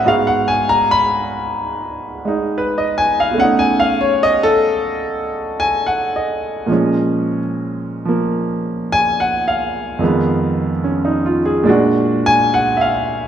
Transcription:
0.05 3.37 G#2 soft
0.05 2.24 G#3 soft
0.05 3.37 B3 soft
0.05 3.37 F#4 medium
0.05 0.33 F5 medium
0.27 0.57 F#5 medium
0.48 0.68 G#5 medium
0.69 0.85 A#5 medium
0.91 1.23 B5 medium
2.25 3.37 G#3 soft
2.25 3.38 D#4 medium
2.58 2.83 B4 medium
2.78 3.06 D#5 medium
2.98 3.17 G#5 medium
3.20 3.35 F5 medium
3.31 6.66 B2 medium
3.31 6.67 A3 soft
3.38 6.69 C#4 medium
3.38 6.71 D#4 medium
3.38 3.65 F#5 loud
3.59 3.88 G#5 medium
3.80 3.99 F5 medium
4.01 4.17 C#5 medium
4.23 4.48 D#5 loud
4.43 4.61 A4 loud
5.60 5.86 G#5 medium
5.86 6.13 F#5 medium
6.16 7.39 D#5 medium
6.66 9.99 A#2 soft
6.66 8.04 F3 soft
6.66 10.01 G#3 soft
6.72 10.02 C#4 medium
8.05 10.00 F3 soft
8.05 10.01 A#3 soft
8.92 9.18 G#5 loud
9.20 9.46 F#5 medium
9.48 10.71 F5 medium
9.99 11.66 F2 medium
9.99 11.66 D#3 soft
9.99 11.64 G#3 medium
10.04 11.68 B3 medium
10.84 11.22 C#4 soft
11.05 11.40 D#4 medium
11.26 11.51 F4 soft
11.45 11.74 G#4 medium
11.64 13.28 A#2 medium
11.64 13.28 G#3 medium
11.64 13.28 D4 medium
11.69 13.28 F#4 medium
12.26 12.51 G#5 loud
12.54 12.78 F#5 medium
12.77 12.86 E5 medium
12.81 13.28 F5 medium

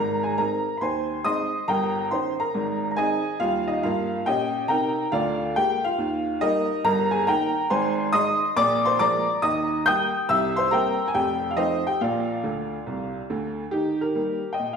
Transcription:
0.00 0.32 G#1 medium
0.00 0.32 G#2 medium
0.00 0.22 A#4 medium
0.00 0.23 A#5 medium
0.23 0.38 G#4 soft
0.23 0.39 G#5 medium
0.38 0.62 G#3 soft
0.38 0.62 C4 soft
0.38 0.62 D#4 soft
0.38 0.74 A#4 medium
0.38 0.77 A#5 medium
0.77 1.18 D#2 medium
0.77 1.18 D#3 medium
0.77 0.82 B5 soft
0.77 1.24 C6 medium
0.82 1.22 C5 medium
0.82 1.22 G#5 medium
1.25 1.49 G#3 soft
1.25 1.49 C4 soft
1.25 1.49 D#4 medium
1.25 1.65 D#5 medium
1.25 1.65 C6 medium
1.25 1.68 D#6 loud
1.68 2.05 G1 medium
1.68 2.05 G2 medium
1.68 2.09 A#4 medium
1.68 2.09 G5 medium
1.68 2.11 A#5 medium
2.11 2.35 D#3 soft
2.11 2.35 C#4 soft
2.11 2.35 D#4 soft
2.11 2.39 C5 medium
2.11 2.40 C6 medium
2.40 2.89 A#4 medium
2.40 2.90 A#5 medium
2.54 2.91 G#1 medium
2.54 2.91 G#2 medium
2.91 2.97 A#5 medium
2.97 3.21 D#3 soft
2.97 3.21 C4 soft
2.97 3.21 D#4 soft
2.97 3.37 G#4 medium
2.97 3.38 D#5 medium
2.97 3.40 G#5 medium
3.40 3.75 D#2 medium
3.40 3.76 G3 medium
3.40 3.67 F4 medium
3.40 3.68 F5 medium
3.67 3.82 D#4 soft
3.67 3.83 D#5 medium
3.83 4.18 G2 medium
3.83 4.19 A#3 medium
3.83 4.24 F4 medium
3.83 4.26 F5 medium
4.26 4.61 A#2 medium
4.26 4.62 C#4 medium
4.26 4.67 G4 medium
4.26 4.67 D#5 medium
4.26 4.68 G5 medium
4.68 5.03 C3 medium
4.68 5.05 D#4 medium
4.68 5.10 A#4 medium
4.68 5.10 G5 medium
4.68 5.12 A#5 medium
5.12 5.49 D2 medium
5.12 5.49 D3 medium
5.12 5.53 F4 medium
5.12 5.53 D5 medium
5.12 5.55 F5 medium
5.56 5.80 G#3 soft
5.56 5.80 A#3 medium
5.56 5.83 G4 medium
5.56 5.84 G5 medium
5.84 6.38 F4 medium
5.84 6.42 F5 medium
5.98 6.35 D#2 medium
5.98 6.35 D#3 medium
6.41 6.65 G3 medium
6.41 6.66 A#3 medium
6.41 6.82 D#4 medium
6.41 6.82 A#4 medium
6.41 6.84 D#5 loud
6.84 7.21 G1 medium
6.84 7.21 G2 medium
6.84 7.11 A#4 medium
6.84 7.13 A#5 loud
7.11 7.26 G#4 medium
7.11 7.27 G#5 medium
7.27 7.51 D#3 soft
7.27 7.51 A#3 soft
7.27 7.51 D#4 soft
7.27 7.68 A#4 medium
7.27 7.68 G5 medium
7.27 7.70 A#5 loud
7.70 8.07 G#1 medium
7.70 8.07 G#2 medium
7.70 8.11 C5 medium
7.70 8.11 G#5 medium
7.70 8.13 C6 medium
8.13 8.37 D#3 medium
8.13 8.37 G#3 medium
8.13 8.37 D#4 medium
8.13 8.54 D#5 medium
8.13 8.54 C6 medium
8.13 8.56 D#6 loud
8.56 8.93 A#1 medium
8.56 8.93 A#2 medium
8.56 8.83 D5 loud
8.56 8.85 D6 loud
8.85 9.00 C5 medium
8.85 9.00 C6 loud
8.99 9.23 F3 medium
8.99 9.24 G#3 medium
8.99 9.24 A#3 medium
8.99 9.40 D5 medium
8.99 9.40 A#5 medium
8.99 9.43 D6 loud
9.42 9.79 D#2 medium
9.42 9.79 D#3 medium
9.42 9.83 D#5 medium
9.42 9.83 A#5 medium
9.42 9.86 D#6 loud
9.86 10.10 G3 medium
9.86 10.10 A#3 medium
9.86 10.27 G5 medium
9.86 10.27 D#6 medium
9.86 10.29 G6 loud
10.29 10.66 C2 medium
10.29 10.66 C3 medium
10.29 10.56 E5 medium
10.29 10.57 E6 loud
10.56 10.71 C5 medium
10.56 10.72 C6 loud
10.71 10.95 G3 medium
10.71 10.96 A#3 soft
10.71 10.96 C4 medium
10.71 11.05 A#4 medium
10.71 11.05 G5 medium
10.71 11.07 A#5 medium
11.08 11.15 G#5 medium
11.14 11.51 F1 medium
11.14 11.51 F2 medium
11.14 11.48 G4 medium
11.14 11.50 G5 medium
11.51 11.58 F5 medium
11.57 11.81 F3 soft
11.57 11.81 A3 soft
11.57 11.81 C4 medium
11.57 11.85 D#4 medium
11.57 11.84 C5 medium
11.57 11.86 D#5 medium
11.87 12.01 G4 soft
11.87 12.01 G5 medium
12.01 12.38 A#1 medium
12.01 12.38 A#2 medium
12.01 13.27 F4 medium
12.01 13.27 D5 medium
12.01 13.30 F5 medium
12.44 12.76 D2 medium
12.44 12.76 D3 medium
12.86 13.19 C2 medium
12.86 13.19 C3 medium
13.30 13.62 D2 medium
13.30 13.62 D3 medium
13.71 14.09 D#3 medium
13.71 14.00 D#4 medium
13.71 14.01 G4 medium
14.01 14.49 G4 medium
14.01 14.52 A#4 medium
14.15 14.39 G3 soft
14.15 14.39 A#3 soft
14.15 14.40 D#4 soft
14.53 14.73 D#5 soft
14.53 14.74 G5 medium
14.59 14.77 A#2 medium
14.73 14.77 F5 medium

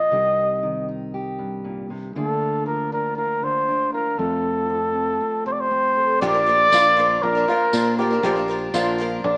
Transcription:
0.00 0.12 F2 soft
0.00 0.12 F4 soft
0.00 0.88 D#5 medium
0.11 2.12 C2 medium
0.11 0.62 C3 medium
0.11 2.13 C4 soft
0.11 0.87 D#4 soft
0.11 1.13 G4 soft
0.63 2.16 D#3 soft
0.89 2.13 D#4 soft
1.14 2.13 G4 medium
1.39 2.12 G2 soft
1.64 1.90 A#2 soft
1.90 2.15 C3 soft
2.15 4.15 D2 medium
2.15 3.41 D3 medium
2.15 4.16 A#3 soft
2.15 2.91 D4 soft
2.15 3.18 F4 medium
2.15 2.63 A4 medium
2.66 4.69 F3 soft
2.66 2.90 A#4 medium
2.93 3.67 D4 soft
2.93 3.16 A#4 medium
3.17 3.94 F4 soft
3.17 3.45 A#4 medium
3.42 4.16 D3 soft
3.42 3.92 C5 medium
3.68 4.16 D4 soft
3.93 5.96 F4 soft
3.93 4.20 A#4 medium
4.18 6.21 F2 medium
4.18 5.19 F2 medium
4.18 6.19 A3 soft
4.18 4.94 C4 soft
4.18 5.46 A4 medium
4.69 6.19 F3 soft
4.95 5.19 C4 soft
5.20 5.70 C4 soft
5.45 6.18 C3 soft
5.45 5.54 C5 medium
5.52 5.62 D5 medium
5.60 6.21 C5 medium
5.71 6.22 C4 soft
5.97 6.19 A4 soft
6.21 6.66 A#1 medium
6.21 6.34 A#2 medium
6.21 6.34 D3 medium
6.21 6.35 F3 medium
6.21 6.35 A#3 medium
6.21 6.34 D4 medium
6.21 6.72 G4 medium
6.21 6.33 A#4 medium
6.21 7.24 D5 loud
6.34 6.45 F3 soft
6.34 6.46 A#3 soft
6.34 6.47 D4 soft
6.34 6.47 A#4 soft
6.46 6.72 F3 medium
6.46 6.73 A#3 medium
6.46 6.73 D4 medium
6.46 6.73 A#4 medium
6.72 7.17 A#1 loud
6.72 6.97 A#2 medium
6.72 6.98 D3 medium
6.72 6.95 F3 medium
6.72 6.97 A#3 medium
6.72 6.98 D4 medium
6.72 7.22 F4 medium
6.72 6.99 A#4 medium
6.72 tambourine medium
6.97 7.35 F3 medium
6.97 7.36 A#3 medium
6.97 7.35 D4 medium
6.97 7.34 A#4 medium
7.22 7.45 A#1 medium
7.22 7.48 D4 medium
7.22 7.97 A#4 medium
7.35 7.47 F3 soft
7.35 7.48 A#3 soft
7.35 7.49 D4 soft
7.35 7.48 A#4 soft
7.48 7.73 F3 medium
7.48 7.73 A#3 medium
7.48 7.74 D4 medium
7.48 7.98 F4 medium
7.48 7.74 A#4 medium
7.73 8.18 A#2 medium
7.73 7.99 A#2 medium
7.73 7.99 D3 medium
7.73 7.97 F3 medium
7.73 7.99 A#3 medium
7.73 7.99 D4 medium
7.73 8.00 A#4 medium
7.73 tambourine medium
7.98 8.11 F3 medium
7.98 8.12 A#3 medium
7.98 8.11 D4 medium
7.98 8.23 G4 medium
7.98 8.70 A#4 medium
7.98 8.09 A#4 medium
8.10 8.23 F3 soft
8.10 8.23 A#3 soft
8.10 8.24 D4 soft
8.10 8.23 A#4 medium
8.23 8.68 A#1 loud
8.23 8.36 A#2 medium
8.23 8.37 D3 medium
8.23 8.37 F3 medium
8.23 8.37 A#3 medium
8.23 8.36 D4 medium
8.23 8.73 G4 medium
8.23 8.35 A#4 medium
8.36 8.47 F3 soft
8.36 8.48 A#3 soft
8.36 8.49 D4 soft
8.36 8.49 A#4 soft
8.48 8.74 F3 medium
8.48 8.74 A#3 medium
8.48 8.75 D4 medium
8.48 8.75 A#4 medium
8.74 9.18 A#1 loud
8.74 8.99 A#2 medium
8.74 9.00 D3 medium
8.74 8.97 F3 medium
8.74 8.98 A#3 medium
8.74 8.99 D4 loud
8.74 9.24 F4 medium
8.74 9.00 A#4 medium
8.74 tambourine medium
8.98 9.37 F3 medium
8.98 9.37 A#3 medium
8.98 9.36 D4 medium
8.98 9.35 A#4 medium
9.24 9.37 A#1 medium
9.24 9.37 D4 medium

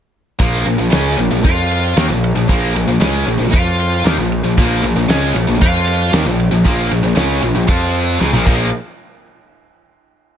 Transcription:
0.39 0.64 A#1 medium
0.39 0.63 A#2 medium
0.39 0.64 F3 loud
0.39 0.65 A#3 loud
0.39 kick loud
0.39 ride loud
0.65 0.78 A#1 medium
0.65 0.77 A#2 medium
0.65 0.78 F3 medium
0.65 ride medium
0.78 0.91 A#1 medium
0.78 0.90 A#2 medium
0.78 0.90 F3 medium
0.90 1.17 C#2 medium
0.90 1.17 C#3 medium
0.90 1.17 G#3 loud
0.90 1.17 C#4 loud
0.90 snare loud
0.90 ride loud
1.18 1.31 A#1 medium
1.18 1.30 A#2 medium
1.18 1.30 F3 medium
1.18 ride medium
1.31 1.44 A#1 medium
1.31 1.43 A#2 medium
1.31 1.43 F3 medium
1.43 1.93 F2 medium
1.43 1.95 F3 medium
1.43 1.96 C4 loud
1.43 1.96 F4 loud
1.43 kick loud
1.43 ride loud
1.71 ride medium
1.97 2.09 D#2 medium
1.97 2.09 D#3 medium
1.97 2.09 A#3 loud
1.97 snare loud
1.97 ride loud
2.09 2.34 A#1 medium
2.09 2.30 A#2 medium
2.09 2.31 F3 medium
2.09 snare soft
2.24 ride medium
2.36 2.48 A#1 medium
2.36 2.47 A#2 medium
2.36 2.47 F3 medium
2.48 2.73 A#1 medium
2.48 2.73 A#2 medium
2.48 2.74 F3 loud
2.48 2.74 A#3 medium
2.48 kick loud
2.48 ride loud
2.75 2.87 A#1 medium
2.75 2.86 A#2 medium
2.75 2.87 F3 medium
2.75 ride medium
2.87 3.00 A#1 medium
2.87 2.99 A#2 medium
2.87 3.00 F3 medium
3.00 3.25 C#2 medium
3.00 3.26 C#3 medium
3.00 3.26 G#3 loud
3.00 3.26 C#4 loud
3.00 snare loud
3.00 ride loud
3.26 3.39 A#1 medium
3.26 3.38 A#2 medium
3.26 3.38 F3 medium
3.26 ride medium
3.39 3.52 A#1 medium
3.39 3.52 A#2 medium
3.39 3.52 F3 medium
3.52 4.02 F2 medium
3.52 4.04 F3 loud
3.52 4.04 C4 loud
3.52 4.04 F4 loud
3.52 kick loud
3.52 ride medium
3.80 ride medium
4.04 4.17 D#2 medium
4.04 4.17 D#3 loud
4.04 4.17 A#3 loud
4.04 snare loud
4.04 ride loud
4.18 4.42 A#1 medium
4.18 4.39 A#2 medium
4.18 4.39 F3 medium
4.18 snare soft
4.32 ride medium
4.44 4.56 A#1 medium
4.44 4.56 A#2 medium
4.44 4.56 F3 medium
4.57 4.82 A#1 loud
4.57 4.81 A#2 loud
4.57 4.82 F3 loud
4.57 4.83 A#3 loud
4.57 kick loud
4.57 ride loud
4.83 4.95 A#1 medium
4.83 4.95 A#2 medium
4.83 4.95 F3 medium
4.83 ride medium
4.96 5.08 A#1 medium
4.96 5.08 A#2 medium
4.96 5.09 F3 medium
5.08 5.33 C#2 medium
5.08 5.34 C#3 medium
5.08 5.34 G#3 loud
5.08 5.34 C#4 loud
5.08 snare loud
5.08 ride loud
5.35 5.47 A#1 medium
5.35 5.46 A#2 medium
5.35 5.47 F3 medium
5.35 ride medium
5.47 5.60 A#1 medium
5.47 5.61 A#2 medium
5.47 5.61 F3 medium
5.61 6.10 F2 medium
5.61 6.12 F3 medium
5.61 6.12 C4 loud
5.61 6.12 F4 loud
5.61 kick loud
5.61 ride loud
5.87 ride medium
6.13 6.25 D#2 medium
6.13 6.25 D#3 loud
6.13 6.25 A#3 loud
6.13 snare loud
6.13 ride loud
6.26 6.50 A#1 medium
6.26 6.47 A#2 medium
6.26 6.47 F3 medium
6.40 ride medium
6.51 6.64 A#1 medium
6.51 6.63 A#2 medium
6.51 6.64 F3 medium
6.65 6.89 A#1 loud
6.65 6.89 A#2 loud
6.65 6.89 F3 loud
6.65 6.90 A#3 loud
6.65 kick loud
6.65 ride loud
6.90 7.03 A#1 medium
6.90 7.02 A#2 medium
6.90 7.02 F3 medium
6.90 ride medium
7.03 7.16 A#1 medium
7.03 7.15 A#2 medium
7.03 7.15 F3 medium
7.15 7.41 C#2 medium
7.15 7.41 C#3 loud
7.15 7.41 G#3 loud
7.15 7.42 C#4 loud
7.15 snare loud
7.15 ride loud
7.41 7.55 A#1 medium
7.41 7.54 A#2 medium
7.41 7.54 F3 medium
7.41 ride medium
7.55 7.68 A#1 medium
7.55 7.67 A#2 medium
7.55 7.66 F3 medium
7.67 8.17 F2 medium
7.67 8.19 F3 medium
7.67 8.19 C4 medium
7.67 8.20 F4 loud
7.67 kick loud
7.67 ride loud
7.95 ride medium
8.20 8.33 C#2 medium
8.20 8.32 C#3 loud
8.20 8.33 G#3 loud
8.20 snare medium
8.33 8.46 A#1 medium
8.33 8.45 A#2 loud
8.33 8.45 F3 loud
8.33 mid tom medium
8.46 8.71 A#1 loud
8.46 8.67 A#2 loud
8.46 8.67 F3 medium
8.46 8.68 A#3 medium
8.46 kick loud
8.46 crash medium

